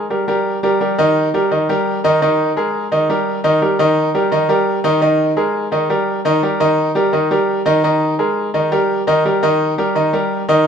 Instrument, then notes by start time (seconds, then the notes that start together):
grand piano
0.10 G3 G4 A#4
0.28 G3 G4 A#4
0.63 G3 G4 A#4
0.80 G3 G4 A#4
0.98 D#3 D#4 D#5
1.34 G3 G4 A#4
1.51 D#3 D#4 D#5
1.69 G3 G4 A#4
2.04 D#3 D#4 D#5
2.22 D#3 D#4 D#5
2.56 G#3 G#4 A#4
2.92 D#3 D#4 D#5
3.09 G3 G4 A#4
3.44 D#3 D#4 D#5
3.62 G3 G4 A#4
3.79 D#3 D#4 D#5
4.14 G3 G4 A#4
4.32 D#3 D#4 D#5
4.49 G3 G4 A#4
4.84 D#3 D#4 D#5
5.01 D#3 D#4 D#5
5.37 G#3 G#4 A#4
5.72 D#3 D#4 D#5
5.90 G3 G4 A#4
6.25 D#3 D#4 D#5
6.43 G3 G4 A#4
6.60 D#3 D#4 D#5
6.95 G3 G4 A#4
7.13 D#3 D#4 D#5
7.31 G3 G4 A#4
7.65 D#3 D#4 D#5
7.84 D#3 D#4 D#5
8.19 G#3 G#4 A#4
8.54 D#3 D#4 D#5
8.72 G3 G4 A#4
9.07 D#3 D#4 D#5
9.25 G3 G4 A#4
9.43 D#3 D#4 D#5
9.78 G3 G4 A#4
9.95 D#3 D#4 D#5
10.13 G3 G4 A#4
10.48 D#3 D#4 D#5